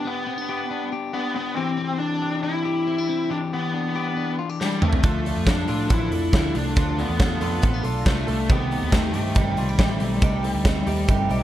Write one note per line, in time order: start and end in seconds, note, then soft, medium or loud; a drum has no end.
0.00 0.26 D4 medium
0.00 0.49 G4 medium
0.05 1.34 B3 medium
0.05 0.89 B3 medium
0.27 0.38 C4 medium
0.38 0.69 D4 soft
0.49 0.92 G4 medium
0.70 1.13 D4 medium
0.92 1.57 G4 medium
1.14 1.34 B3 medium
1.14 1.81 D4 medium
1.35 1.55 B3 medium
1.35 1.61 B3 medium
1.56 3.29 E3 medium
1.56 1.97 C4 medium
1.56 2.21 G4 medium
1.78 2.86 C4 medium
1.98 2.40 D4 medium
1.98 2.43 D4 medium
2.22 2.64 G4 medium
2.43 2.87 D4 medium
2.43 3.30 E4 loud
2.65 3.30 G4 medium
2.87 2.98 C4 medium
2.98 3.72 D4 medium
3.09 3.52 C4 medium
3.30 5.03 E3 medium
3.30 3.36 D4 loud
3.30 3.94 G4 medium
3.53 4.35 B3 medium
3.74 4.16 D4 medium
3.95 4.38 G4 medium
4.17 4.60 D4 medium
4.39 4.49 F4 medium
4.49 5.04 G4 medium
4.60 4.82 G3 medium
4.60 5.47 D4 medium
4.60 snare medium
4.82 5.49 A3 loud
4.82 5.08 C4 medium
4.82 mid tom loud
4.93 floor tom medium
5.03 5.31 D2 loud
5.03 5.25 D3 medium
5.03 5.25 F3 medium
5.03 6.77 F3 medium
5.03 5.25 D4 medium
5.03 5.25 F4 medium
5.03 5.68 F4 medium
5.03 5.24 A4 medium
5.03 kick loud
5.03 closed hi-hat medium
5.25 6.55 A3 medium
5.25 5.46 D4 soft
5.25 5.47 F4 soft
5.25 5.47 A4 medium
5.25 open hi-hat medium
5.37 5.64 F2 medium
5.46 5.68 F3 medium
5.46 5.69 D4 medium
5.46 5.89 D4 medium
5.46 5.88 D4 medium
5.46 5.68 F4 medium
5.46 5.67 A4 medium
5.46 kick loud
5.46 snare loud
5.46 closed hi-hat medium
5.68 5.87 A2 medium
5.68 5.90 D4 soft
5.68 6.12 F4 medium
5.68 5.90 F4 soft
5.68 5.90 A4 medium
5.68 open hi-hat medium
5.90 6.09 A1 loud
5.90 6.12 D3 medium
5.90 6.12 F3 medium
5.90 6.32 D4 medium
5.90 6.12 D4 medium
5.90 6.55 E4 loud
5.90 6.12 F4 medium
5.90 6.11 A4 medium
5.90 kick loud
5.90 closed hi-hat medium
6.12 6.30 F2 medium
6.12 6.33 D4 soft
6.12 6.33 F4 soft
6.12 6.34 A4 medium
6.12 open hi-hat medium
6.33 6.52 D2 medium
6.33 6.55 F3 medium
6.33 7.18 D4 medium
6.33 6.55 D4 medium
6.33 6.55 F4 medium
6.33 6.54 A4 medium
6.33 kick loud
6.33 snare loud
6.33 closed hi-hat medium
6.55 6.74 C2 loud
6.55 6.97 A3 medium
6.55 7.00 D4 loud
6.55 6.76 D4 soft
6.55 6.76 F4 soft
6.55 6.76 A4 medium
6.55 open hi-hat medium
6.76 7.04 D2 loud
6.76 6.98 D3 medium
6.76 6.98 F3 medium
6.76 6.98 D4 medium
6.76 6.98 F4 medium
6.76 7.41 F4 medium
6.76 6.97 A4 medium
6.76 kick loud
6.76 closed hi-hat medium
6.98 8.28 A3 medium
6.98 7.81 B3 medium
6.98 7.19 D4 soft
6.98 7.20 F4 soft
6.98 7.20 A4 medium
6.98 open hi-hat medium
7.09 7.37 E2 medium
7.19 7.41 F3 medium
7.19 7.63 D4 medium
7.19 7.41 D4 medium
7.19 7.41 F4 medium
7.19 7.40 A4 medium
7.19 kick loud
7.19 snare loud
7.19 closed hi-hat medium
7.41 7.60 F2 medium
7.41 7.61 D4 soft
7.41 7.83 F4 medium
7.41 7.62 F4 medium
7.41 7.62 A4 medium
7.41 open hi-hat medium
7.62 7.82 A1 medium
7.62 7.84 D3 medium
7.62 7.84 F3 medium
7.62 7.74 C4 medium
7.62 7.84 D4 medium
7.62 7.83 F4 loud
7.62 7.82 A4 loud
7.62 kick loud
7.62 closed hi-hat medium
7.74 8.06 D4 medium
7.83 8.03 B1 medium
7.83 8.05 D4 medium
7.83 8.05 F4 medium
7.83 8.49 F4 medium
7.83 8.06 A4 medium
7.83 open hi-hat medium
8.05 8.24 C2 medium
8.05 8.27 F3 medium
8.05 8.47 A3 medium
8.05 8.28 D4 medium
8.05 8.54 D4 medium
8.05 8.27 F4 medium
8.05 8.26 A4 medium
8.05 kick loud
8.05 snare loud
8.05 closed hi-hat medium
8.27 8.46 C2 medium
8.27 8.72 A3 medium
8.27 8.50 D4 medium
8.27 8.50 F4 medium
8.27 8.49 A4 medium
8.27 open hi-hat medium
8.49 8.77 C2 loud
8.49 8.71 C3 medium
8.49 10.23 D#3 medium
8.49 8.71 A3 medium
8.49 8.90 B3 loud
8.49 8.71 C4 medium
8.49 8.71 D#4 medium
8.49 8.70 G4 medium
8.49 9.15 G4 medium
8.49 kick loud
8.49 closed hi-hat medium
8.71 10.00 A3 medium
8.71 8.92 C4 soft
8.71 8.92 D#4 medium
8.71 8.93 G4 medium
8.71 open hi-hat medium
8.83 9.15 D#2 loud
8.92 9.14 A3 medium
8.92 9.13 A3 loud
8.92 9.14 C4 medium
8.92 9.35 C4 medium
8.92 9.14 D#4 medium
8.92 9.13 G4 medium
8.92 kick loud
8.92 snare loud
8.92 closed hi-hat medium
9.14 9.33 G2 medium
9.14 9.36 A3 loud
9.14 9.35 C4 soft
9.14 9.35 D#4 medium
9.14 9.36 G4 medium
9.14 9.58 G4 medium
9.14 open hi-hat medium
9.35 9.54 G1 medium
9.35 9.57 C3 medium
9.35 11.43 G3 medium
9.35 9.57 A3 medium
9.35 9.57 C4 medium
9.35 9.78 C4 medium
9.35 9.56 D#4 medium
9.35 9.55 G4 medium
9.35 kick loud
9.35 closed hi-hat medium
9.56 9.76 C2 medium
9.56 9.78 C4 soft
9.56 9.79 D#4 soft
9.56 9.69 F4 medium
9.56 9.79 G4 medium
9.56 open hi-hat medium
9.69 10.22 G4 medium
9.78 9.97 A1 medium
9.78 10.00 A3 medium
9.78 10.01 C4 medium
9.78 10.64 C4 medium
9.78 10.00 D#4 medium
9.78 9.99 G4 medium
9.78 kick loud
9.78 snare loud
9.78 closed hi-hat medium
10.00 10.19 B1 medium
10.00 10.43 A3 medium
10.00 10.21 C4 medium
10.00 10.22 D#4 medium
10.00 10.22 G4 medium
10.00 open hi-hat medium
10.22 10.50 C2 loud
10.22 10.44 C3 medium
10.22 10.44 A3 medium
10.22 10.44 C4 medium
10.22 10.43 D#4 medium
10.22 10.87 G4 medium
10.22 10.42 G4 medium
10.22 kick loud
10.22 closed hi-hat medium
10.43 11.43 A3 medium
10.43 10.64 C4 medium
10.43 10.65 D#4 medium
10.43 10.65 G4 medium
10.43 open hi-hat medium
10.54 10.82 D2 medium
10.65 10.87 A3 medium
10.65 10.87 C4 medium
10.65 11.08 C4 medium
10.65 10.87 D#4 medium
10.65 10.85 G4 medium
10.65 kick loud
10.65 snare loud
10.65 closed hi-hat medium
10.86 11.05 D#2 medium
10.86 11.08 C4 medium
10.86 11.08 D#4 medium
10.86 11.08 G4 medium
10.86 11.30 G4 medium
10.86 open hi-hat medium
11.08 11.27 G1 loud
11.08 11.30 C3 medium
11.08 11.30 A3 medium
11.08 11.30 C4 medium
11.08 11.43 C4 medium
11.08 11.29 D#4 medium
11.08 11.28 G4 loud
11.08 kick loud
11.08 closed hi-hat medium
11.29 11.43 B1 medium
11.29 11.43 C4 soft
11.29 11.43 D#4 medium
11.29 11.43 G4 medium
11.29 open hi-hat medium